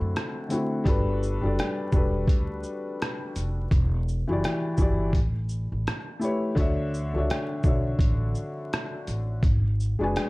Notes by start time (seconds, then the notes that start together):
Already playing: D3 A3 C4 E4 F#4 A4
0.01 F#2
0.16 cross-stick, closed hi-hat
0.48 D3 A3 C4 E4, closed hi-hat, shaker
0.53 F#4
0.84 G1 G3 D4 F#4 A4, kick, closed hi-hat
0.88 B4
1.23 shaker
1.41 F#1 G3 D4 F#4 A4
1.46 D5
1.59 cross-stick, closed hi-hat
1.92 E1 G3 D4 F#4 A4, kick, shaker
1.96 B4
2.27 D2, kick, closed hi-hat
2.63 shaker
3.02 cross-stick, closed hi-hat
3.36 F1, closed hi-hat, shaker
3.71 E1, kick, closed hi-hat
4.08 shaker
4.28 F#1 E3 E4 F#4 G4
4.32 D5
4.44 cross-stick, closed hi-hat
4.77 G1 E3 E4 F#4 G4, kick, shaker
4.82 D5
5.13 A1, kick, closed hi-hat
5.49 shaker
5.72 A1
5.87 cross-stick, closed hi-hat
6.19 A3 E4 G4 B4, shaker
6.24 C#5
6.55 D2 D3 D4 F#4 C#5, kick, closed hi-hat
6.60 E5
6.94 shaker
7.13 C#2 D3 D4 F#4 C#5
7.18 E5
7.30 cross-stick, closed hi-hat
7.63 B1 D3 D4 F#4 C#5, kick, shaker
7.68 E5
7.99 A1, kick, closed hi-hat
8.35 shaker
8.73 cross-stick, closed hi-hat
9.07 A1, closed hi-hat, shaker
9.43 G#1, kick, closed hi-hat
9.80 shaker
9.99 F#1 G#3 D4 F#4 B4
10.03 G#5
10.16 cross-stick, closed hi-hat